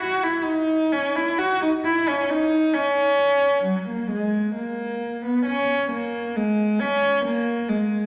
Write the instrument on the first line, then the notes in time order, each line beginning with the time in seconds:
cello
0.00 F#4
0.23 E4
0.45 D#4
0.92 C#4
1.16 E4
1.39 F#4
1.62 D#4
1.84 E4
2.08 C#4
2.30 D#4
2.74 C#4
3.64 F#3
3.88 A#3
4.11 G#3
4.55 A#3
5.25 B3
5.45 C#4
5.92 A#3
6.36 G#3
6.80 C#4
7.25 A#3
7.69 G#3